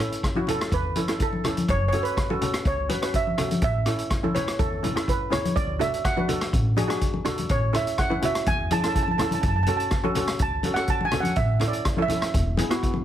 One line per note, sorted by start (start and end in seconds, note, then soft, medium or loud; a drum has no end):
0.00 0.21 C#4 medium
0.00 0.21 E4 medium
0.00 0.21 A4 medium
0.00 0.44 C#5 medium
0.00 cross-stick medium
0.00 closed hi-hat medium
0.12 closed hi-hat medium
0.23 kick medium
0.23 cross-stick medium
0.23 closed hi-hat medium
0.35 0.43 C#4 medium
0.35 0.43 E4 medium
0.35 0.43 F#4 medium
0.35 high conga medium
0.47 0.77 C#4 medium
0.47 0.77 E4 medium
0.47 0.77 A4 medium
0.47 0.60 A4 medium
0.47 closed hi-hat medium
0.47 low conga medium
0.61 cross-stick medium
0.61 closed hi-hat medium
0.72 0.94 E2 medium
0.72 1.22 B4 medium
0.72 kick loud
0.72 closed hi-hat medium
0.96 1.03 C#4 medium
0.96 1.04 E4 medium
0.96 1.04 A4 medium
0.96 closed hi-hat medium
0.96 high conga medium
1.08 1.30 C#4 medium
1.08 1.30 E4 medium
1.08 1.30 A4 medium
1.08 cross-stick medium
1.08 closed hi-hat medium
1.20 1.66 A4 medium
1.20 kick medium
1.20 closed hi-hat medium
1.33 high conga medium
1.44 1.69 C#4 medium
1.44 1.69 E4 medium
1.44 1.69 A4 medium
1.44 cross-stick medium
1.44 closed hi-hat medium
1.44 low conga medium
1.57 closed hi-hat medium
1.57 high conga medium
1.68 1.91 F#1 loud
1.68 1.86 C#5 loud
1.68 kick loud
1.68 closed hi-hat medium
1.88 2.01 C#5 medium
1.88 closed hi-hat medium
1.93 2.15 C#4 medium
1.93 2.15 F#4 medium
1.93 2.15 A4 medium
1.93 low conga medium
2.03 2.62 B4 medium
2.03 closed hi-hat medium
2.17 kick medium
2.17 cross-stick medium
2.17 closed hi-hat medium
2.30 2.37 C#4 medium
2.30 2.37 F#4 medium
2.30 2.37 A4 medium
2.30 high conga medium
2.41 2.70 C#4 medium
2.41 2.70 F#4 medium
2.41 2.71 A4 medium
2.41 closed hi-hat medium
2.41 low conga medium
2.54 cross-stick medium
2.54 closed hi-hat medium
2.65 2.88 C#2 medium
2.65 3.16 C#5 medium
2.65 kick loud
2.65 closed hi-hat medium
2.89 2.97 C#4 medium
2.89 2.97 F#4 medium
2.89 2.97 B4 medium
2.89 closed hi-hat medium
2.89 high conga medium
3.02 3.24 C#4 medium
3.02 3.24 F#4 medium
3.02 3.24 B4 medium
3.02 cross-stick medium
3.02 closed hi-hat medium
3.14 3.37 E5 medium
3.14 kick medium
3.14 closed hi-hat medium
3.27 high conga medium
3.38 3.62 C#4 medium
3.38 3.62 F#4 medium
3.38 3.62 A4 medium
3.38 cross-stick medium
3.38 closed hi-hat medium
3.38 low conga medium
3.51 closed hi-hat medium
3.51 high conga medium
3.62 3.84 A1 medium
3.62 4.38 E5 medium
3.62 kick loud
3.62 closed hi-hat medium
3.86 4.08 C#4 medium
3.86 4.09 E4 medium
3.86 4.09 A4 medium
3.86 cross-stick medium
3.86 closed hi-hat medium
3.99 closed hi-hat medium
4.10 kick medium
4.10 cross-stick medium
4.10 closed hi-hat medium
4.23 4.30 C#4 medium
4.23 4.30 E4 medium
4.23 4.30 A4 medium
4.23 high conga medium
4.35 4.64 C#4 medium
4.35 4.64 E4 medium
4.35 4.64 B4 medium
4.35 4.60 C#5 medium
4.35 closed hi-hat medium
4.35 high conga medium
4.35 low conga medium
4.48 cross-stick medium
4.48 closed hi-hat medium
4.59 4.82 E2 medium
4.59 5.09 A4 medium
4.59 kick loud
4.59 closed hi-hat medium
4.83 4.91 C#4 medium
4.83 4.91 E4 medium
4.83 4.91 A4 medium
4.83 closed hi-hat medium
4.83 high conga medium
4.83 low conga medium
4.96 5.17 C#4 medium
4.96 5.18 E4 medium
4.96 5.18 A4 medium
4.96 cross-stick medium
4.96 closed hi-hat medium
5.08 5.31 B4 medium
5.08 kick medium
5.08 closed hi-hat medium
5.30 5.55 C#4 medium
5.30 5.56 E4 medium
5.30 5.56 G#4 medium
5.30 5.57 C#5 medium
5.30 cross-stick medium
5.30 closed hi-hat medium
5.30 low conga medium
5.45 closed hi-hat medium
5.45 high conga medium
5.56 5.79 D2 loud
5.56 5.78 D5 medium
5.56 kick loud
5.56 closed hi-hat medium
5.79 6.02 D4 medium
5.79 6.02 F#4 medium
5.79 6.02 A4 medium
5.79 6.05 E5 medium
5.79 closed hi-hat medium
5.79 low conga medium
5.94 closed hi-hat medium
6.05 6.73 F#5 medium
6.05 kick medium
6.05 cross-stick medium
6.05 closed hi-hat medium
6.17 6.24 D4 medium
6.17 6.24 F#4 medium
6.17 6.24 B4 medium
6.17 high conga medium
6.28 6.58 D4 medium
6.28 6.58 F#4 medium
6.28 6.58 A4 medium
6.28 closed hi-hat medium
6.28 low conga medium
6.41 cross-stick medium
6.41 closed hi-hat medium
6.53 6.76 A1 medium
6.53 kick loud
6.53 closed hi-hat medium
6.77 6.84 D4 medium
6.77 6.85 F#4 medium
6.77 6.85 G#4 medium
6.77 closed hi-hat medium
6.77 high conga medium
6.88 7.10 D4 medium
6.88 7.11 F#4 medium
6.88 7.11 G#4 medium
6.88 cross-stick medium
6.88 closed hi-hat medium
7.01 kick medium
7.01 closed hi-hat medium
7.14 high conga medium
7.25 7.49 D4 medium
7.25 7.49 F#4 medium
7.25 7.50 A4 medium
7.25 cross-stick medium
7.25 closed hi-hat medium
7.25 low conga medium
7.38 closed hi-hat medium
7.38 high conga medium
7.49 7.72 A1 medium
7.49 7.62 C#5 medium
7.49 kick loud
7.49 closed hi-hat medium
7.73 7.95 C#4 medium
7.73 7.95 E4 medium
7.73 7.96 A4 medium
7.73 8.00 E5 medium
7.73 cross-stick medium
7.73 closed hi-hat medium
7.73 low conga medium
7.87 closed hi-hat medium
7.98 8.23 F#5 medium
7.98 kick medium
7.98 cross-stick medium
7.98 closed hi-hat medium
8.10 8.17 C#4 medium
8.10 8.17 E4 medium
8.10 8.17 B4 medium
8.10 high conga medium
8.22 8.51 C#4 medium
8.22 8.52 E4 medium
8.22 8.52 F#4 medium
8.22 8.49 E5 medium
8.22 closed hi-hat medium
8.22 low conga medium
8.35 cross-stick medium
8.35 closed hi-hat medium
8.46 8.69 E2 medium
8.46 8.72 G#5 loud
8.46 kick loud
8.46 closed hi-hat medium
8.71 8.78 C#4 medium
8.71 8.79 E4 medium
8.71 8.79 G#4 medium
8.71 8.79 A5 loud
8.71 closed hi-hat medium
8.71 high conga medium
8.80 9.05 C#4 medium
8.80 9.05 E4 medium
8.80 8.87 A5 medium
8.80 cross-stick medium
8.80 closed hi-hat medium
8.85 9.06 A4 medium
8.85 8.94 A5 medium
8.95 9.02 A5 medium
8.95 kick medium
8.95 closed hi-hat medium
9.03 9.09 A5 medium
9.08 9.17 A5 medium
9.08 high conga medium
9.18 9.44 C#4 medium
9.18 9.44 E4 medium
9.18 9.44 A4 medium
9.18 9.24 A5 medium
9.18 cross-stick medium
9.18 closed hi-hat medium
9.18 low conga medium
9.25 9.31 A5 medium
9.31 9.40 A5 medium
9.31 closed hi-hat medium
9.31 high conga medium
9.42 9.66 F#1 loud
9.42 9.47 A5 medium
9.42 kick loud
9.42 closed hi-hat medium
9.48 9.54 A5 medium
9.56 9.62 A5 medium
9.63 9.68 A5 medium
9.63 closed hi-hat medium
9.63 low conga medium
9.68 9.89 C#4 medium
9.68 9.90 F#4 medium
9.68 9.90 A4 medium
9.68 9.76 A5 medium
9.77 9.84 A5 medium
9.77 closed hi-hat medium
9.91 kick medium
9.91 cross-stick medium
9.91 closed hi-hat medium
10.04 10.11 C#4 medium
10.04 10.11 F#4 medium
10.04 10.11 A4 medium
10.04 high conga medium
10.15 10.45 C#4 medium
10.15 10.46 F#4 medium
10.15 10.46 A4 medium
10.15 closed hi-hat medium
10.15 low conga medium
10.28 cross-stick medium
10.28 closed hi-hat medium
10.39 10.63 C#2 medium
10.39 10.72 A5 loud
10.39 kick loud
10.39 closed hi-hat medium
10.63 10.72 C#4 medium
10.63 10.72 F#4 medium
10.63 10.72 A4 medium
10.63 closed hi-hat medium
10.63 high conga medium
10.74 10.99 C#4 medium
10.74 10.90 F#5 medium
10.74 cross-stick medium
10.74 closed hi-hat medium
10.78 10.99 F#4 medium
10.78 10.99 A4 medium
10.88 11.04 A5 loud
10.88 kick medium
10.88 closed hi-hat medium
11.01 high conga medium
11.05 11.22 G#5 medium
11.11 11.37 C#4 medium
11.11 11.37 F#4 medium
11.11 11.37 A4 medium
11.11 cross-stick medium
11.11 closed hi-hat medium
11.11 low conga medium
11.20 11.37 F#5 medium
11.20 high conga medium
11.25 closed hi-hat medium
11.36 11.59 A1 loud
11.36 11.70 E5 medium
11.36 kick loud
11.36 closed hi-hat medium
11.60 11.83 C#4 medium
11.60 11.83 E4 medium
11.60 11.83 A4 medium
11.60 cross-stick medium
11.60 closed hi-hat medium
11.60 low conga medium
11.68 12.02 D5 medium
11.73 closed hi-hat medium
11.85 kick medium
11.85 cross-stick medium
11.85 closed hi-hat medium
11.97 12.05 C#4 medium
11.97 12.05 E4 medium
11.97 12.05 A4 medium
11.97 high conga medium
12.02 12.71 E5 medium
12.08 12.34 C#4 medium
12.08 12.34 E4 medium
12.08 12.34 A4 medium
12.08 closed hi-hat medium
12.08 high conga medium
12.08 low conga medium
12.22 cross-stick medium
12.22 closed hi-hat medium
12.34 12.57 E1 medium
12.34 kick loud
12.34 closed hi-hat medium
12.57 12.66 B3 medium
12.57 12.66 E4 medium
12.57 12.66 G#4 medium
12.57 closed hi-hat medium
12.57 high conga medium
12.57 low conga medium
12.71 12.93 B3 medium
12.71 12.93 E4 medium
12.71 12.93 F#4 medium
12.71 cross-stick medium
12.71 closed hi-hat medium
12.83 kick medium
12.83 closed hi-hat medium
12.94 high conga medium